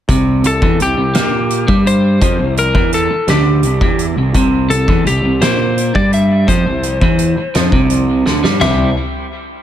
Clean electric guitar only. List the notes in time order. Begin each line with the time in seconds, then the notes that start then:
0.10 C3
0.45 C3
0.63 E3
0.81 C3
0.98 C3
1.15 A#3
1.68 G3
2.22 F3
2.40 C3
2.75 E3
3.11 muted clean electric guitar stroke
3.29 D3
3.66 C3
3.82 E3
4.18 C3
4.35 C3
4.72 C3
4.89 E3
5.09 C3
5.26 C3
5.44 A#3
5.96 G3
6.48 F3
6.67 C3
7.03 E3
7.38 muted clean electric guitar stroke
7.55 F3
7.73 C3
8.26 D3
8.44 G3
8.60 G3 C4 E4 G4